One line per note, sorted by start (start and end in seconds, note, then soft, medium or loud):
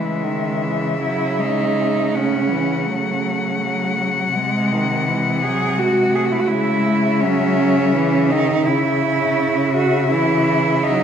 0.00 4.32 C#3 soft
0.00 0.25 E3 soft
0.00 0.98 G#3 soft
0.00 2.14 E5 soft
0.24 0.64 D#3 soft
0.63 1.00 E3 soft
1.01 1.40 F#3 soft
1.01 1.41 E4 soft
1.39 2.15 G#3 soft
1.39 2.17 D#4 soft
2.12 2.52 A3 soft
2.12 2.89 C#4 soft
2.12 6.51 F#5 soft
2.51 2.89 E3 soft
2.87 3.62 F#3 soft
2.87 3.97 A3 soft
3.62 4.36 F#3 soft
4.35 6.47 C3 soft
4.35 5.40 G#3 soft
4.35 4.73 G#3 soft
4.72 5.09 D#3 soft
5.08 5.44 E3 soft
5.42 5.78 F#3 soft
5.42 5.80 G#4 medium
5.78 6.15 G#3 soft
5.78 6.17 F#4 medium
6.13 6.52 A3 soft
6.13 6.27 G#4 soft
6.25 6.33 F#4 soft
6.32 6.41 E4 soft
6.40 6.49 F#4 soft
6.47 7.24 G#3 soft
6.47 7.22 E4 medium
6.47 8.64 E5 soft
6.52 8.62 C#3 soft
7.21 7.94 F#3 soft
7.21 8.31 C#4 medium
7.94 8.32 E3 soft
8.30 8.68 D#3 soft
8.30 8.67 D#4 medium
8.65 11.04 C#3 soft
8.65 10.12 C#3 soft
8.65 9.73 E4 medium
8.65 11.04 E5 soft
9.74 10.10 F#4 medium
10.11 10.84 E3 soft
10.11 10.85 E4 medium
10.83 11.04 F#3 soft
10.83 11.04 D#4 medium